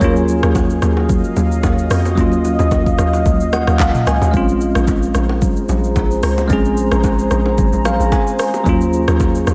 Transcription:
0.00 0.42 D#2 loud
0.00 2.12 F#3 medium
0.00 4.30 F#3 medium
0.00 2.13 A#3 medium
0.00 2.14 C#4 medium
0.00 0.15 A#4 medium
0.00 0.15 C#5 medium
0.00 4.30 D#5 medium
0.00 2.15 F5 medium
0.00 kick loud
0.00 low conga medium
0.00 shaker medium
0.04 2.15 F4 medium
0.16 shaker medium
0.28 shaker medium
0.43 0.81 D#2 loud
0.43 cross-stick loud
0.43 shaker soft
0.55 kick loud
0.55 high bongo medium
0.55 shaker medium
0.70 shaker medium
0.82 1.23 D#2 loud
0.82 cross-stick medium
0.82 shaker medium
0.97 high bongo medium
1.09 kick loud
1.09 low conga medium
1.09 shaker medium
1.24 shaker medium
1.36 1.62 D#2 medium
1.36 low bongo medium
1.36 low conga medium
1.36 shaker medium
1.51 shaker medium
1.63 1.89 D#2 medium
1.63 kick medium
1.63 high bongo medium
1.63 shaker medium
1.78 shaker medium
1.90 2.16 F2 loud
1.90 cross-stick loud
1.90 open hi-hat medium
1.90 shaker medium
2.05 low bongo medium
2.05 shaker medium
2.15 2.58 D#2 medium
2.15 4.29 F#3 medium
2.15 4.30 A#3 medium
2.15 4.30 C#4 medium
2.15 4.32 F5 medium
2.15 kick loud
2.15 low conga medium
2.15 shaker medium
2.21 4.31 F4 medium
2.32 low bongo soft
2.32 shaker medium
2.45 high bongo medium
2.45 shaker medium
2.59 2.97 D#2 loud
2.59 low bongo medium
2.59 shaker soft
2.71 kick loud
2.71 high bongo medium
2.71 shaker medium
2.86 kick medium
2.86 shaker medium
2.99 3.25 D#2 loud
2.99 cross-stick medium
2.99 shaker medium
3.13 high bongo medium
3.13 shaker medium
3.26 3.42 C#2 loud
3.26 kick loud
3.26 low conga medium
3.26 shaker medium
3.40 3.66 D#2 medium
3.40 shaker medium
3.53 3.78 F#5 medium
3.53 cross-stick loud
3.53 low bongo medium
3.53 low conga medium
3.53 shaker medium
3.67 3.79 D#2 loud
3.67 cross-stick loud
3.67 shaker medium
3.80 3.94 C#2 loud
3.80 4.05 F5 medium
3.80 kick loud
3.80 clap loud
3.80 high bongo medium
3.80 shaker medium
3.95 mid tom loud
3.95 shaker medium
4.07 4.21 C#2 medium
4.07 4.32 G#5 medium
4.07 cross-stick loud
4.07 shaker medium
4.21 4.33 D#2 loud
4.21 low bongo medium
4.21 shaker medium
4.31 4.74 A#1 loud
4.31 6.45 G#3 medium
4.31 6.46 C4 medium
4.31 6.47 C#4 medium
4.31 8.62 G#4 medium
4.31 8.62 C5 medium
4.31 8.62 A#5 medium
4.31 kick loud
4.31 low conga medium
4.31 shaker medium
4.37 6.47 F4 medium
4.49 shaker medium
4.61 shaker medium
4.75 5.13 A#1 loud
4.75 cross-stick medium
4.75 shaker soft
4.87 kick loud
4.87 high bongo medium
4.87 shaker medium
5.03 shaker medium
5.15 5.55 A#1 loud
5.15 cross-stick medium
5.15 shaker medium
5.29 high bongo medium
5.42 kick loud
5.42 low conga medium
5.42 shaker medium
5.56 shaker medium
5.69 5.95 A#1 medium
5.69 low bongo medium
5.69 low conga medium
5.69 shaker medium
5.84 shaker medium
5.96 6.22 A#1 medium
5.96 kick loud
5.96 high bongo medium
5.96 shaker medium
6.11 shaker medium
6.23 6.49 C#2 medium
6.23 cross-stick loud
6.23 open hi-hat medium
6.23 shaker medium
6.38 low bongo medium
6.38 shaker medium
6.48 6.90 A#1 loud
6.48 8.61 G#3 medium
6.48 8.62 C4 medium
6.48 8.63 C#4 medium
6.48 kick loud
6.48 low conga medium
6.48 shaker medium
6.53 8.64 G#4 medium
6.65 shaker medium
6.77 shaker medium
6.92 7.29 A#1 loud
6.92 cross-stick loud
6.92 shaker soft
7.04 kick loud
7.04 high bongo medium
7.04 shaker medium
7.19 shaker medium
7.31 7.57 A#1 loud
7.31 cross-stick medium
7.31 shaker medium
7.46 high bongo medium
7.58 7.72 G#1 medium
7.58 kick loud
7.58 low conga medium
7.58 shaker medium
7.73 7.99 A#1 medium
7.73 shaker medium
7.85 8.10 F5 medium
7.85 cross-stick loud
7.85 low bongo medium
7.85 low conga medium
7.85 shaker medium
8.00 8.12 A#1 medium
8.00 shaker medium
8.12 8.62 G#5 medium
8.12 kick loud
8.12 high bongo medium
8.12 shaker medium
8.27 shaker medium
8.39 cross-stick loud
8.39 open hi-hat medium
8.39 shaker medium
8.54 low bongo medium
8.54 shaker medium
8.64 9.06 D#2 loud
8.64 9.54 F#3 medium
8.64 9.54 A#3 medium
8.64 9.54 C#4 medium
8.64 9.54 D#5 medium
8.64 9.54 F5 medium
8.64 9.54 C#6 medium
8.64 kick loud
8.64 low conga medium
8.64 shaker medium
8.69 9.54 F4 medium
8.81 shaker medium
8.93 shaker medium
9.08 9.46 D#2 loud
9.08 cross-stick loud
9.08 shaker soft
9.20 kick loud
9.20 high bongo medium
9.20 shaker medium
9.35 shaker medium
9.47 9.54 D#2 loud
9.47 cross-stick medium
9.47 shaker medium

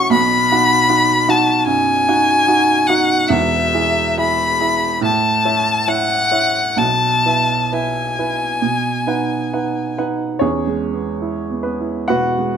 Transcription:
0.00 0.14 A2 medium
0.00 0.15 C#4 medium
0.00 0.14 F#4 medium
0.00 0.14 F#5 medium
0.00 0.11 C#6 loud
0.10 0.49 B1 medium
0.10 0.50 B2 medium
0.10 1.31 B5 loud
0.51 0.87 D#4 soft
0.51 0.87 F#4 soft
0.51 0.87 F#5 medium
0.89 1.25 D#4 medium
0.89 1.25 F#4 soft
0.89 1.25 F#5 medium
1.28 1.64 D#4 medium
1.28 1.64 F#4 medium
1.28 1.64 F#5 medium
1.28 1.66 A5 medium
1.66 2.06 F#2 medium
1.66 2.88 G#5 loud
2.08 2.44 D#4 medium
2.08 2.44 F#4 medium
2.08 2.45 F#5 medium
2.48 2.84 D#4 medium
2.48 2.85 F#4 soft
2.48 2.85 F#5 medium
2.87 3.26 D#4 medium
2.87 3.26 F#4 medium
2.87 3.30 F#5 medium
2.87 3.26 F#5 medium
3.29 3.72 E1 medium
3.29 3.73 E2 medium
3.29 4.18 E5 medium
3.74 4.15 E4 medium
3.74 4.15 G#4 medium
3.74 4.15 E5 medium
4.17 4.57 E4 medium
4.17 4.57 G#4 soft
4.17 4.57 E5 medium
4.17 5.03 B5 loud
4.60 4.99 E4 soft
4.60 4.99 G#4 soft
4.60 5.00 E5 medium
5.01 5.44 A2 medium
5.01 5.89 A5 medium
5.45 5.85 E4 medium
5.45 5.85 C#5 soft
5.45 5.85 E5 medium
5.88 6.29 E4 soft
5.88 6.29 C#5 soft
5.88 6.29 E5 medium
5.88 6.80 F#5 loud
6.31 6.75 E4 medium
6.31 6.75 C#5 medium
6.31 6.75 E5 medium
6.76 7.24 B1 medium
6.76 7.25 B2 medium
6.76 7.74 A5 medium
7.25 7.68 E4 soft
7.25 7.68 B4 soft
7.25 7.69 E5 medium
7.72 8.14 E4 soft
7.72 8.13 B4 soft
7.72 8.14 E5 medium
7.72 9.99 G#5 medium
8.19 8.59 E4 soft
8.19 8.60 B4 soft
8.19 8.60 E5 medium
8.62 9.06 B2 medium
9.07 9.49 D#4 soft
9.07 9.49 B4 medium
9.07 9.49 F#5 soft
9.53 9.94 D#4 soft
9.53 9.95 B4 soft
9.53 9.95 F#5 medium
9.98 10.37 D#4 medium
9.98 10.37 B4 medium
9.98 10.37 F#5 medium
10.39 12.07 E2 medium
10.39 11.61 C#4 medium
10.39 11.61 G#4 medium
10.39 11.65 C#5 medium
10.67 11.11 G#3 soft
10.93 11.38 B3 soft
11.21 11.68 E4 soft
11.50 11.63 B3 soft
11.63 12.07 B3 soft
11.63 12.08 B4 medium
11.80 12.28 E4 soft
12.08 12.56 B2 soft
12.08 12.57 F#4 medium
12.08 12.57 B4 medium
12.08 12.57 F#5 loud
12.39 12.57 G#3 soft

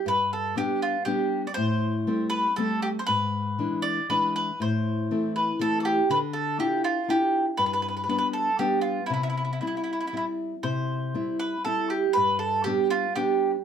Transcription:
0.06 0.54 G2 medium
0.06 0.30 B4 medium
0.33 0.55 A4 medium
0.56 0.96 G3 soft
0.56 0.96 B3 soft
0.56 0.96 D4 soft
0.56 0.80 G4 medium
0.82 1.05 F4 medium
1.05 1.46 G3 soft
1.05 1.46 B3 soft
1.05 1.47 D4 soft
1.05 1.41 G4 medium
1.47 1.54 D5 medium
1.54 2.05 A2 medium
1.54 2.26 C5 medium
2.07 2.47 G3 soft
2.07 2.47 A3 soft
2.07 2.47 C4 soft
2.30 2.54 B4 medium
2.56 2.97 G3 soft
2.56 2.98 A3 soft
2.56 2.98 C4 soft
2.56 2.80 A4 medium
2.82 2.87 G4 medium
2.99 3.06 C5 medium
3.07 3.57 G#2 medium
3.07 3.79 B4 medium
3.59 3.99 E3 soft
3.59 3.99 G#3 soft
3.59 3.99 D4 soft
3.82 4.06 D5 medium
4.09 4.50 E3 soft
4.09 4.50 G#3 soft
4.09 4.50 D4 soft
4.09 4.33 B4 medium
4.36 4.58 B4 medium
4.60 5.08 A2 medium
4.60 5.32 C5 medium
5.11 5.50 E3 soft
5.11 5.51 A3 soft
5.11 5.51 C4 soft
5.36 5.58 B4 medium
5.59 6.00 E3 soft
5.59 6.00 A3 soft
5.59 6.00 C4 soft
5.59 5.78 A4 medium
5.80 5.86 A4 soft
5.85 6.08 G4 medium
6.10 6.58 D3 medium
6.10 6.17 B4 medium
6.33 6.57 A4 medium
6.58 6.99 D4 soft
6.58 6.99 E4 soft
6.58 6.99 F4 soft
6.58 6.84 G4 medium
6.84 7.10 F4 medium
7.08 7.49 D4 soft
7.08 7.49 E4 soft
7.08 7.49 F4 soft
7.08 7.45 G4 medium
7.57 8.07 G2 medium
7.57 7.65 B4 medium
7.66 7.72 B4 soft
7.73 7.81 B4 medium
7.82 7.87 B4 medium
7.89 7.95 B4 soft
7.97 8.02 B4 soft
8.04 8.08 B4 soft
8.08 8.49 G3 soft
8.08 8.49 B3 soft
8.08 8.49 D4 soft
8.08 8.17 B4 medium
8.18 8.26 B4 medium
8.33 8.57 A4 medium
8.59 9.00 G3 soft
8.59 9.00 B3 soft
8.59 9.00 D4 soft
8.59 8.81 G4 medium
8.81 9.06 F4 medium
9.06 9.59 C3 medium
9.06 9.12 E4 medium
9.14 9.22 E4 soft
9.23 9.28 E4 medium
9.30 9.36 E4 soft
9.37 9.43 E4 soft
9.45 9.52 E4 soft
9.53 9.60 E4 soft
9.61 10.03 G3 soft
9.61 10.03 C4 soft
9.61 9.66 E4 soft
9.61 10.03 E4 soft
9.67 9.76 E4 soft
9.77 9.82 E4 soft
9.84 9.92 E4 soft
9.93 9.99 E4 soft
10.01 10.06 E4 soft
10.07 10.15 E4 soft
10.13 10.54 G3 soft
10.13 10.54 C4 soft
10.13 10.54 E4 soft
10.17 10.24 E4 soft
10.63 11.13 C3 medium
10.63 11.36 C5 medium
11.14 11.55 G3 soft
11.14 11.55 C4 soft
11.14 11.56 E4 soft
11.40 11.63 B4 medium
11.65 12.06 G3 soft
11.65 12.06 C4 soft
11.65 12.06 E4 soft
11.65 11.88 A4 medium
11.90 12.16 G4 medium
12.13 12.65 G2 medium
12.13 12.38 B4 medium
12.39 12.63 A4 medium
12.64 13.06 G3 soft
12.64 13.06 B3 soft
12.64 13.06 D4 soft
12.64 12.88 G4 medium
12.90 13.14 F4 medium
13.16 13.56 G3 soft
13.16 13.56 B3 soft
13.16 13.56 D4 soft
13.16 13.50 G4 medium

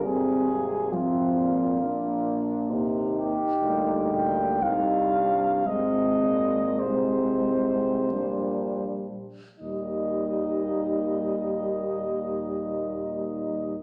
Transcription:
0.00 0.94 G3 soft
0.04 1.83 G#1 soft
0.04 0.93 C3 soft
0.04 0.50 C4 soft
0.04 0.94 G#4 medium
0.49 0.93 A#3 soft
0.92 1.39 C3 soft
0.92 1.79 F3 soft
0.92 1.79 C4 soft
0.92 2.70 F4 medium
1.37 1.81 A#2 soft
1.80 2.70 A#1 soft
1.80 2.72 A#2 soft
1.80 3.31 A#3 soft
1.80 2.69 D4 soft
2.69 3.33 D#2 soft
2.69 3.34 C3 soft
2.69 4.45 D#4 soft
3.16 4.13 G4 medium
3.61 4.64 D2 soft
3.61 4.07 A#2 soft
3.61 4.57 G3 soft
4.12 4.64 A#2 soft
4.12 4.64 G5 medium
4.62 5.67 C2 soft
4.62 5.67 C3 soft
4.62 5.65 G3 soft
4.62 5.13 D#4 soft
4.62 5.68 F5 medium
5.13 5.66 D4 soft
5.66 6.79 G#1 soft
5.66 6.25 C3 soft
5.66 8.07 G#3 soft
5.66 6.80 C4 soft
5.66 6.81 D#5 medium
6.23 6.85 A#2 soft
6.79 8.14 C2 soft
6.79 8.09 C4 soft
6.79 8.84 C5 medium
6.83 7.44 G#2 soft
7.45 8.13 G#2 soft
8.11 9.11 A#1 soft
8.11 9.11 A#2 soft
8.11 9.09 G3 soft
8.11 9.10 D4 soft
9.59 13.79 D#2 soft
9.59 13.78 A#2 soft
9.59 13.77 G3 soft
9.59 13.77 D#4 soft
9.59 13.77 D#5 soft

